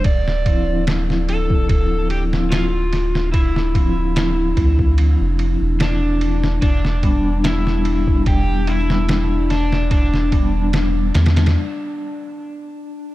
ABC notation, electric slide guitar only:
X:1
M:4/4
L:1/8
Q:"Swing 16ths" 1/4=73
K:Ddor
V:1 name="Electric slide guitar"
d2 z A A G F2 | E4 z2 D2 | D2 E2 G E2 D | D2 z6 |]